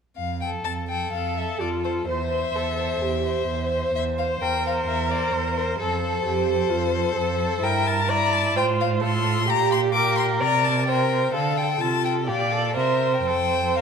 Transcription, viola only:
0, 0, Header, 1, 2, 480
1, 0, Start_track
1, 0, Key_signature, -1, "major"
1, 0, Tempo, 472069
1, 179, Time_signature, 4, 2, 24, 8
1, 4017, Tempo, 462606
1, 12657, Tempo, 494234
1, 14147, End_track
2, 0, Start_track
2, 0, Title_t, "Viola"
2, 0, Program_c, 0, 41
2, 1140, Note_on_c, 0, 69, 47
2, 1631, Note_on_c, 0, 65, 43
2, 1646, Note_off_c, 0, 69, 0
2, 2108, Note_off_c, 0, 65, 0
2, 2119, Note_on_c, 0, 72, 49
2, 2599, Note_on_c, 0, 69, 49
2, 2614, Note_off_c, 0, 72, 0
2, 3064, Note_on_c, 0, 67, 39
2, 3079, Note_off_c, 0, 69, 0
2, 3536, Note_off_c, 0, 67, 0
2, 3542, Note_on_c, 0, 72, 50
2, 4497, Note_on_c, 0, 70, 51
2, 4513, Note_off_c, 0, 72, 0
2, 5924, Note_off_c, 0, 70, 0
2, 5931, Note_on_c, 0, 69, 46
2, 6394, Note_off_c, 0, 69, 0
2, 6405, Note_on_c, 0, 67, 52
2, 6866, Note_on_c, 0, 65, 45
2, 6881, Note_off_c, 0, 67, 0
2, 7334, Note_off_c, 0, 65, 0
2, 7341, Note_on_c, 0, 69, 54
2, 7838, Note_on_c, 0, 70, 62
2, 7853, Note_off_c, 0, 69, 0
2, 8315, Note_on_c, 0, 74, 73
2, 8330, Note_off_c, 0, 70, 0
2, 8800, Note_on_c, 0, 72, 58
2, 8816, Note_off_c, 0, 74, 0
2, 9274, Note_on_c, 0, 69, 57
2, 9290, Note_off_c, 0, 72, 0
2, 9749, Note_off_c, 0, 69, 0
2, 9755, Note_on_c, 0, 67, 57
2, 10228, Note_off_c, 0, 67, 0
2, 10237, Note_on_c, 0, 70, 58
2, 10714, Note_on_c, 0, 74, 67
2, 10730, Note_off_c, 0, 70, 0
2, 11203, Note_on_c, 0, 72, 51
2, 11218, Note_off_c, 0, 74, 0
2, 11680, Note_on_c, 0, 69, 52
2, 11696, Note_off_c, 0, 72, 0
2, 12163, Note_off_c, 0, 69, 0
2, 12170, Note_on_c, 0, 65, 52
2, 12643, Note_off_c, 0, 65, 0
2, 12649, Note_on_c, 0, 74, 57
2, 13108, Note_off_c, 0, 74, 0
2, 13126, Note_on_c, 0, 72, 50
2, 13597, Note_off_c, 0, 72, 0
2, 13609, Note_on_c, 0, 72, 54
2, 14147, Note_off_c, 0, 72, 0
2, 14147, End_track
0, 0, End_of_file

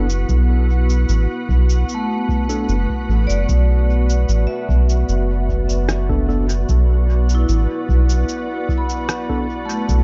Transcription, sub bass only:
0, 0, Header, 1, 2, 480
1, 0, Start_track
1, 0, Key_signature, 2, "minor"
1, 0, Tempo, 800000
1, 173, Time_signature, 4, 2, 24, 8
1, 6022, End_track
2, 0, Start_track
2, 0, Title_t, "Sub bass"
2, 0, Program_c, 0, 38
2, 0, Note_on_c, 0, 30, 97
2, 150, Note_off_c, 0, 30, 0
2, 174, Note_on_c, 0, 35, 93
2, 631, Note_off_c, 0, 35, 0
2, 653, Note_on_c, 0, 33, 92
2, 762, Note_off_c, 0, 33, 0
2, 893, Note_on_c, 0, 35, 91
2, 1105, Note_off_c, 0, 35, 0
2, 1612, Note_on_c, 0, 30, 87
2, 1722, Note_off_c, 0, 30, 0
2, 1851, Note_on_c, 0, 33, 96
2, 1962, Note_off_c, 0, 33, 0
2, 1976, Note_on_c, 0, 30, 88
2, 2078, Note_off_c, 0, 30, 0
2, 2093, Note_on_c, 0, 35, 92
2, 2551, Note_off_c, 0, 35, 0
2, 2571, Note_on_c, 0, 33, 93
2, 2681, Note_off_c, 0, 33, 0
2, 2813, Note_on_c, 0, 35, 94
2, 3025, Note_off_c, 0, 35, 0
2, 3052, Note_on_c, 0, 30, 97
2, 3990, Note_off_c, 0, 30, 0
2, 4014, Note_on_c, 0, 35, 93
2, 4471, Note_off_c, 0, 35, 0
2, 4492, Note_on_c, 0, 33, 96
2, 4602, Note_off_c, 0, 33, 0
2, 4734, Note_on_c, 0, 35, 95
2, 4946, Note_off_c, 0, 35, 0
2, 5934, Note_on_c, 0, 35, 94
2, 6022, Note_off_c, 0, 35, 0
2, 6022, End_track
0, 0, End_of_file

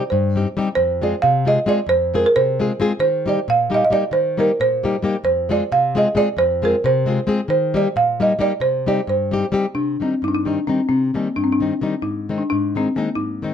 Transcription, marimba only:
0, 0, Header, 1, 2, 480
1, 0, Start_track
1, 0, Key_signature, -3, "minor"
1, 0, Tempo, 449102
1, 804, Time_signature, 5, 3, 24, 8
1, 8962, Tempo, 455235
1, 14396, End_track
2, 0, Start_track
2, 0, Title_t, "Marimba"
2, 0, Program_c, 0, 12
2, 108, Note_on_c, 0, 72, 74
2, 759, Note_off_c, 0, 72, 0
2, 805, Note_on_c, 0, 72, 97
2, 1100, Note_off_c, 0, 72, 0
2, 1104, Note_on_c, 0, 74, 74
2, 1305, Note_on_c, 0, 77, 106
2, 1329, Note_off_c, 0, 74, 0
2, 1576, Note_off_c, 0, 77, 0
2, 1580, Note_on_c, 0, 75, 91
2, 1778, Note_off_c, 0, 75, 0
2, 1805, Note_on_c, 0, 74, 98
2, 2019, Note_off_c, 0, 74, 0
2, 2022, Note_on_c, 0, 72, 110
2, 2302, Note_on_c, 0, 70, 82
2, 2308, Note_off_c, 0, 72, 0
2, 2330, Note_on_c, 0, 68, 68
2, 2354, Note_off_c, 0, 70, 0
2, 2395, Note_off_c, 0, 68, 0
2, 2419, Note_on_c, 0, 70, 96
2, 2521, Note_on_c, 0, 72, 110
2, 2527, Note_off_c, 0, 70, 0
2, 3195, Note_off_c, 0, 72, 0
2, 3208, Note_on_c, 0, 72, 100
2, 3472, Note_off_c, 0, 72, 0
2, 3518, Note_on_c, 0, 74, 88
2, 3713, Note_off_c, 0, 74, 0
2, 3739, Note_on_c, 0, 77, 96
2, 3849, Note_off_c, 0, 77, 0
2, 4001, Note_on_c, 0, 75, 91
2, 4024, Note_on_c, 0, 77, 68
2, 4041, Note_off_c, 0, 75, 0
2, 4079, Note_off_c, 0, 77, 0
2, 4110, Note_on_c, 0, 75, 82
2, 4198, Note_on_c, 0, 74, 103
2, 4205, Note_off_c, 0, 75, 0
2, 4412, Note_on_c, 0, 72, 98
2, 4414, Note_off_c, 0, 74, 0
2, 4702, Note_off_c, 0, 72, 0
2, 4704, Note_on_c, 0, 70, 80
2, 4926, Note_on_c, 0, 72, 98
2, 4927, Note_off_c, 0, 70, 0
2, 5594, Note_off_c, 0, 72, 0
2, 5607, Note_on_c, 0, 72, 93
2, 5898, Note_off_c, 0, 72, 0
2, 5898, Note_on_c, 0, 74, 88
2, 6101, Note_off_c, 0, 74, 0
2, 6117, Note_on_c, 0, 77, 97
2, 6379, Note_off_c, 0, 77, 0
2, 6392, Note_on_c, 0, 75, 89
2, 6600, Note_on_c, 0, 74, 99
2, 6602, Note_off_c, 0, 75, 0
2, 6814, Note_off_c, 0, 74, 0
2, 6824, Note_on_c, 0, 72, 110
2, 7079, Note_off_c, 0, 72, 0
2, 7108, Note_on_c, 0, 70, 84
2, 7204, Note_off_c, 0, 70, 0
2, 7329, Note_on_c, 0, 72, 105
2, 8005, Note_off_c, 0, 72, 0
2, 8017, Note_on_c, 0, 72, 93
2, 8303, Note_on_c, 0, 74, 79
2, 8304, Note_off_c, 0, 72, 0
2, 8516, Note_on_c, 0, 77, 93
2, 8526, Note_off_c, 0, 74, 0
2, 8755, Note_off_c, 0, 77, 0
2, 8787, Note_on_c, 0, 75, 86
2, 8994, Note_on_c, 0, 74, 95
2, 9001, Note_off_c, 0, 75, 0
2, 9204, Note_on_c, 0, 72, 89
2, 9211, Note_off_c, 0, 74, 0
2, 9485, Note_on_c, 0, 74, 80
2, 9495, Note_off_c, 0, 72, 0
2, 9710, Note_on_c, 0, 72, 73
2, 9715, Note_off_c, 0, 74, 0
2, 10353, Note_off_c, 0, 72, 0
2, 10399, Note_on_c, 0, 62, 82
2, 10663, Note_off_c, 0, 62, 0
2, 10688, Note_on_c, 0, 60, 63
2, 10915, Note_off_c, 0, 60, 0
2, 10918, Note_on_c, 0, 63, 85
2, 10961, Note_on_c, 0, 62, 70
2, 10972, Note_off_c, 0, 63, 0
2, 11029, Note_on_c, 0, 63, 84
2, 11030, Note_off_c, 0, 62, 0
2, 11151, Note_off_c, 0, 63, 0
2, 11153, Note_on_c, 0, 62, 67
2, 11373, Note_on_c, 0, 60, 74
2, 11380, Note_off_c, 0, 62, 0
2, 11588, Note_off_c, 0, 60, 0
2, 11601, Note_on_c, 0, 60, 78
2, 11865, Note_off_c, 0, 60, 0
2, 11882, Note_on_c, 0, 58, 60
2, 12101, Note_on_c, 0, 62, 79
2, 12114, Note_off_c, 0, 58, 0
2, 12180, Note_on_c, 0, 60, 68
2, 12186, Note_off_c, 0, 62, 0
2, 12263, Note_off_c, 0, 60, 0
2, 12271, Note_on_c, 0, 62, 82
2, 12799, Note_on_c, 0, 63, 75
2, 12817, Note_off_c, 0, 62, 0
2, 13172, Note_off_c, 0, 63, 0
2, 13174, Note_on_c, 0, 62, 62
2, 13287, Note_off_c, 0, 62, 0
2, 13300, Note_on_c, 0, 62, 85
2, 13572, Note_off_c, 0, 62, 0
2, 13585, Note_on_c, 0, 60, 65
2, 13779, Note_off_c, 0, 60, 0
2, 13789, Note_on_c, 0, 58, 67
2, 13991, Note_on_c, 0, 63, 78
2, 14010, Note_off_c, 0, 58, 0
2, 14396, Note_off_c, 0, 63, 0
2, 14396, End_track
0, 0, End_of_file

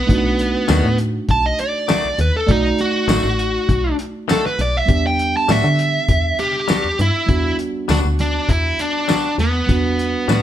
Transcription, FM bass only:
0, 0, Header, 1, 2, 480
1, 0, Start_track
1, 0, Key_signature, 1, "minor"
1, 0, Tempo, 600000
1, 73, Time_signature, 4, 2, 24, 8
1, 8338, End_track
2, 0, Start_track
2, 0, Title_t, "FM bass"
2, 0, Program_c, 0, 39
2, 72, Note_on_c, 0, 35, 86
2, 448, Note_off_c, 0, 35, 0
2, 555, Note_on_c, 0, 39, 99
2, 650, Note_off_c, 0, 39, 0
2, 674, Note_on_c, 0, 45, 88
2, 954, Note_off_c, 0, 45, 0
2, 1029, Note_on_c, 0, 35, 97
2, 1218, Note_off_c, 0, 35, 0
2, 1637, Note_on_c, 0, 35, 39
2, 1695, Note_off_c, 0, 35, 0
2, 1749, Note_on_c, 0, 39, 91
2, 1846, Note_off_c, 0, 39, 0
2, 1989, Note_on_c, 0, 35, 95
2, 2178, Note_off_c, 0, 35, 0
2, 2462, Note_on_c, 0, 33, 103
2, 2562, Note_off_c, 0, 33, 0
2, 2590, Note_on_c, 0, 33, 96
2, 2872, Note_off_c, 0, 33, 0
2, 2950, Note_on_c, 0, 35, 107
2, 3138, Note_off_c, 0, 35, 0
2, 3671, Note_on_c, 0, 35, 92
2, 3859, Note_off_c, 0, 35, 0
2, 3910, Note_on_c, 0, 40, 92
2, 4286, Note_off_c, 0, 40, 0
2, 4390, Note_on_c, 0, 45, 98
2, 4486, Note_off_c, 0, 45, 0
2, 4512, Note_on_c, 0, 50, 97
2, 4792, Note_off_c, 0, 50, 0
2, 4871, Note_on_c, 0, 40, 91
2, 5058, Note_off_c, 0, 40, 0
2, 5475, Note_on_c, 0, 40, 39
2, 5533, Note_off_c, 0, 40, 0
2, 5593, Note_on_c, 0, 43, 93
2, 5688, Note_off_c, 0, 43, 0
2, 5830, Note_on_c, 0, 40, 98
2, 6018, Note_off_c, 0, 40, 0
2, 6315, Note_on_c, 0, 38, 91
2, 6410, Note_off_c, 0, 38, 0
2, 6436, Note_on_c, 0, 38, 81
2, 6715, Note_off_c, 0, 38, 0
2, 6791, Note_on_c, 0, 40, 94
2, 6979, Note_off_c, 0, 40, 0
2, 7506, Note_on_c, 0, 40, 99
2, 7697, Note_off_c, 0, 40, 0
2, 7751, Note_on_c, 0, 40, 91
2, 8128, Note_off_c, 0, 40, 0
2, 8226, Note_on_c, 0, 45, 95
2, 8325, Note_off_c, 0, 45, 0
2, 8338, End_track
0, 0, End_of_file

